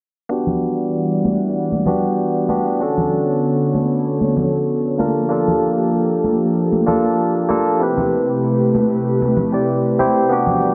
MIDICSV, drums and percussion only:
0, 0, Header, 1, 2, 480
1, 0, Start_track
1, 0, Key_signature, 1, "minor"
1, 0, Tempo, 625000
1, 235, Time_signature, 4, 2, 24, 8
1, 8252, End_track
2, 0, Start_track
2, 0, Title_t, "Drums"
2, 238, Note_on_c, 9, 69, 38
2, 314, Note_off_c, 9, 69, 0
2, 358, Note_on_c, 9, 64, 61
2, 364, Note_on_c, 9, 69, 19
2, 435, Note_off_c, 9, 64, 0
2, 440, Note_off_c, 9, 69, 0
2, 478, Note_on_c, 9, 69, 69
2, 555, Note_off_c, 9, 69, 0
2, 603, Note_on_c, 9, 69, 27
2, 680, Note_off_c, 9, 69, 0
2, 720, Note_on_c, 9, 69, 38
2, 796, Note_off_c, 9, 69, 0
2, 845, Note_on_c, 9, 69, 17
2, 922, Note_off_c, 9, 69, 0
2, 957, Note_on_c, 9, 69, 73
2, 958, Note_on_c, 9, 63, 68
2, 1034, Note_off_c, 9, 69, 0
2, 1035, Note_off_c, 9, 63, 0
2, 1082, Note_on_c, 9, 69, 27
2, 1159, Note_off_c, 9, 69, 0
2, 1199, Note_on_c, 9, 69, 37
2, 1276, Note_off_c, 9, 69, 0
2, 1320, Note_on_c, 9, 63, 72
2, 1324, Note_on_c, 9, 69, 17
2, 1397, Note_off_c, 9, 63, 0
2, 1400, Note_off_c, 9, 69, 0
2, 1426, Note_on_c, 9, 64, 71
2, 1439, Note_on_c, 9, 69, 71
2, 1503, Note_off_c, 9, 64, 0
2, 1516, Note_off_c, 9, 69, 0
2, 1564, Note_on_c, 9, 69, 28
2, 1640, Note_off_c, 9, 69, 0
2, 1678, Note_on_c, 9, 69, 39
2, 1755, Note_off_c, 9, 69, 0
2, 1909, Note_on_c, 9, 63, 59
2, 1920, Note_on_c, 9, 69, 66
2, 1986, Note_off_c, 9, 63, 0
2, 1997, Note_off_c, 9, 69, 0
2, 2045, Note_on_c, 9, 69, 25
2, 2122, Note_off_c, 9, 69, 0
2, 2161, Note_on_c, 9, 69, 39
2, 2237, Note_off_c, 9, 69, 0
2, 2284, Note_on_c, 9, 64, 64
2, 2286, Note_on_c, 9, 69, 19
2, 2361, Note_off_c, 9, 64, 0
2, 2363, Note_off_c, 9, 69, 0
2, 2402, Note_on_c, 9, 69, 68
2, 2479, Note_off_c, 9, 69, 0
2, 2526, Note_on_c, 9, 69, 30
2, 2603, Note_off_c, 9, 69, 0
2, 2642, Note_on_c, 9, 69, 43
2, 2719, Note_off_c, 9, 69, 0
2, 2767, Note_on_c, 9, 69, 18
2, 2843, Note_off_c, 9, 69, 0
2, 2874, Note_on_c, 9, 63, 65
2, 2883, Note_on_c, 9, 69, 72
2, 2951, Note_off_c, 9, 63, 0
2, 2960, Note_off_c, 9, 69, 0
2, 3006, Note_on_c, 9, 69, 27
2, 3083, Note_off_c, 9, 69, 0
2, 3123, Note_on_c, 9, 69, 41
2, 3200, Note_off_c, 9, 69, 0
2, 3233, Note_on_c, 9, 63, 76
2, 3246, Note_on_c, 9, 69, 19
2, 3310, Note_off_c, 9, 63, 0
2, 3322, Note_off_c, 9, 69, 0
2, 3352, Note_on_c, 9, 64, 68
2, 3359, Note_on_c, 9, 69, 81
2, 3429, Note_off_c, 9, 64, 0
2, 3436, Note_off_c, 9, 69, 0
2, 3485, Note_on_c, 9, 69, 28
2, 3562, Note_off_c, 9, 69, 0
2, 3600, Note_on_c, 9, 69, 39
2, 3677, Note_off_c, 9, 69, 0
2, 3723, Note_on_c, 9, 69, 20
2, 3800, Note_off_c, 9, 69, 0
2, 3835, Note_on_c, 9, 63, 55
2, 3840, Note_on_c, 9, 69, 63
2, 3912, Note_off_c, 9, 63, 0
2, 3916, Note_off_c, 9, 69, 0
2, 3964, Note_on_c, 9, 69, 28
2, 4041, Note_off_c, 9, 69, 0
2, 4077, Note_on_c, 9, 69, 41
2, 4153, Note_off_c, 9, 69, 0
2, 4203, Note_on_c, 9, 69, 20
2, 4206, Note_on_c, 9, 64, 64
2, 4280, Note_off_c, 9, 69, 0
2, 4283, Note_off_c, 9, 64, 0
2, 4318, Note_on_c, 9, 69, 74
2, 4395, Note_off_c, 9, 69, 0
2, 4444, Note_on_c, 9, 69, 31
2, 4521, Note_off_c, 9, 69, 0
2, 4556, Note_on_c, 9, 69, 43
2, 4633, Note_off_c, 9, 69, 0
2, 4682, Note_on_c, 9, 69, 19
2, 4759, Note_off_c, 9, 69, 0
2, 4793, Note_on_c, 9, 63, 68
2, 4800, Note_on_c, 9, 69, 72
2, 4870, Note_off_c, 9, 63, 0
2, 4877, Note_off_c, 9, 69, 0
2, 4924, Note_on_c, 9, 69, 28
2, 5001, Note_off_c, 9, 69, 0
2, 5041, Note_on_c, 9, 69, 41
2, 5118, Note_off_c, 9, 69, 0
2, 5163, Note_on_c, 9, 63, 71
2, 5165, Note_on_c, 9, 69, 19
2, 5240, Note_off_c, 9, 63, 0
2, 5242, Note_off_c, 9, 69, 0
2, 5281, Note_on_c, 9, 64, 76
2, 5282, Note_on_c, 9, 69, 81
2, 5358, Note_off_c, 9, 64, 0
2, 5359, Note_off_c, 9, 69, 0
2, 5405, Note_on_c, 9, 69, 31
2, 5482, Note_off_c, 9, 69, 0
2, 5521, Note_on_c, 9, 69, 42
2, 5598, Note_off_c, 9, 69, 0
2, 5643, Note_on_c, 9, 69, 20
2, 5720, Note_off_c, 9, 69, 0
2, 5758, Note_on_c, 9, 63, 61
2, 5759, Note_on_c, 9, 69, 75
2, 5834, Note_off_c, 9, 63, 0
2, 5836, Note_off_c, 9, 69, 0
2, 5881, Note_on_c, 9, 69, 28
2, 5958, Note_off_c, 9, 69, 0
2, 5999, Note_on_c, 9, 69, 41
2, 6075, Note_off_c, 9, 69, 0
2, 6123, Note_on_c, 9, 69, 19
2, 6124, Note_on_c, 9, 64, 65
2, 6200, Note_off_c, 9, 69, 0
2, 6201, Note_off_c, 9, 64, 0
2, 6237, Note_on_c, 9, 69, 72
2, 6314, Note_off_c, 9, 69, 0
2, 6363, Note_on_c, 9, 69, 28
2, 6440, Note_off_c, 9, 69, 0
2, 6477, Note_on_c, 9, 69, 41
2, 6554, Note_off_c, 9, 69, 0
2, 6602, Note_on_c, 9, 69, 21
2, 6679, Note_off_c, 9, 69, 0
2, 6716, Note_on_c, 9, 63, 70
2, 6718, Note_on_c, 9, 69, 74
2, 6792, Note_off_c, 9, 63, 0
2, 6795, Note_off_c, 9, 69, 0
2, 6841, Note_on_c, 9, 69, 27
2, 6918, Note_off_c, 9, 69, 0
2, 6958, Note_on_c, 9, 69, 39
2, 7035, Note_off_c, 9, 69, 0
2, 7080, Note_on_c, 9, 63, 74
2, 7083, Note_on_c, 9, 69, 18
2, 7157, Note_off_c, 9, 63, 0
2, 7160, Note_off_c, 9, 69, 0
2, 7193, Note_on_c, 9, 64, 70
2, 7198, Note_on_c, 9, 69, 77
2, 7270, Note_off_c, 9, 64, 0
2, 7274, Note_off_c, 9, 69, 0
2, 7323, Note_on_c, 9, 69, 28
2, 7400, Note_off_c, 9, 69, 0
2, 7437, Note_on_c, 9, 69, 44
2, 7513, Note_off_c, 9, 69, 0
2, 7562, Note_on_c, 9, 69, 21
2, 7639, Note_off_c, 9, 69, 0
2, 7675, Note_on_c, 9, 69, 69
2, 7678, Note_on_c, 9, 63, 58
2, 7752, Note_off_c, 9, 69, 0
2, 7755, Note_off_c, 9, 63, 0
2, 7802, Note_on_c, 9, 69, 28
2, 7879, Note_off_c, 9, 69, 0
2, 7916, Note_on_c, 9, 69, 41
2, 7992, Note_off_c, 9, 69, 0
2, 8039, Note_on_c, 9, 64, 62
2, 8041, Note_on_c, 9, 69, 20
2, 8115, Note_off_c, 9, 64, 0
2, 8118, Note_off_c, 9, 69, 0
2, 8155, Note_on_c, 9, 69, 70
2, 8231, Note_off_c, 9, 69, 0
2, 8252, End_track
0, 0, End_of_file